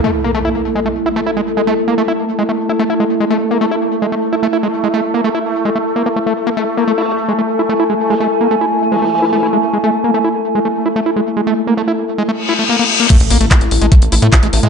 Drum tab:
CC |----------------|----------------|----------------|----------------|
HH |----------------|----------------|----------------|----------------|
CP |----------------|----------------|----------------|----------------|
BD |----------------|----------------|----------------|----------------|

CC |----------------|----------------|----------------|----------------|
HH |----------------|----------------|----------------|----------------|
CP |----------------|----------------|----------------|----------------|
BD |----------------|----------------|----------------|----------------|

CC |x---------------|
HH |xxoxxxoxxxoxxxox|
CP |----x-------x---|
BD |o---o---o---o---|